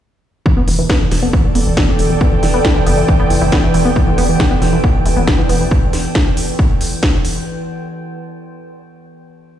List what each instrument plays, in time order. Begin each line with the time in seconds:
0.46 synth arpeggio sound E3, synth drone E3 B3, ambient pad A4, kick
0.57 synth arpeggio sound B3
0.68 analog synth bass E1, synth arpeggio sound E3, open hi-hat
0.77 synth arpeggio sound E3, ambient pad D5
0.90 synth arpeggio sound B3, kick, snare
1.01 synth arpeggio sound E3
1.11 analog synth bass E1, synth arpeggio sound E3, snare, open hi-hat
1.23 synth arpeggio sound B3, ambient pad G5
1.33 synth arpeggio sound E3, kick
1.44 synth arpeggio sound E3
1.55 analog synth bass E1, synth arpeggio sound B3, open hi-hat
1.66 analog synth bass E1, synth arpeggio sound E3
1.77 synth arpeggio sound E3, kick, snare
1.88 synth arpeggio sound B3
1.99 analog synth bass E1, synth arpeggio sound E3, open hi-hat
2.10 synth arpeggio sound E3
2.21 synth arpeggio sound B3, kick
2.32 synth arpeggio sound E3
2.43 analog synth bass E1, synth arpeggio sound E3, snare, open hi-hat
2.54 synth arpeggio sound B3
2.65 synth arpeggio sound E3, kick, snare
2.76 synth arpeggio sound E3
2.87 analog synth bass F#1, synth arpeggio sound B3, open hi-hat
2.98 synth arpeggio sound E3
3.08 synth arpeggio sound E3, kick
3.20 synth arpeggio sound B3
3.30 analog synth bass F#1, synth arpeggio sound E3, open hi-hat
3.41 analog synth bass F#1, synth arpeggio sound E3
3.52 synth arpeggio sound B3, kick, snare
3.63 synth arpeggio sound E3
3.74 analog synth bass E1, synth arpeggio sound E3, open hi-hat
3.85 synth arpeggio sound B3
3.96 synth arpeggio sound E3, kick
4.07 synth arpeggio sound E3
4.18 analog synth bass E1, synth arpeggio sound B3, open hi-hat
4.29 synth arpeggio sound E3
4.40 synth arpeggio sound E3, kick, snare
4.51 synth arpeggio sound B3
4.62 analog synth bass E1, synth arpeggio sound E3, snare, open hi-hat
4.73 synth arpeggio sound E3
4.84 synth arpeggio sound B3, kick
4.95 synth arpeggio sound E3
5.05 analog synth bass E1, synth arpeggio sound E3, open hi-hat
5.17 analog synth bass E1, synth arpeggio sound B3
5.27 synth arpeggio sound E3, kick, snare
5.39 synth arpeggio sound E3
5.49 analog synth bass E1, synth arpeggio sound B3, open hi-hat
5.61 synth arpeggio sound E3
5.71 kick
5.93 snare, open hi-hat
6.15 kick, snare
6.37 open hi-hat
6.59 kick
6.81 open hi-hat
7.03 kick, snare
7.25 open hi-hat